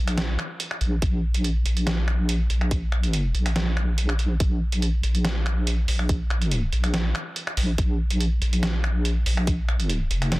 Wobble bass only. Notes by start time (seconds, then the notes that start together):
Already playing: A#1
0.81 A#1
1.02 A#1
1.66 A#1
2.50 A#1
3.35 A#1
4.40 A#1
5.04 A#1
5.88 A#1
6.73 A#1
7.57 A#1
7.78 A#1
8.42 A#1
9.26 A#1
10.11 F1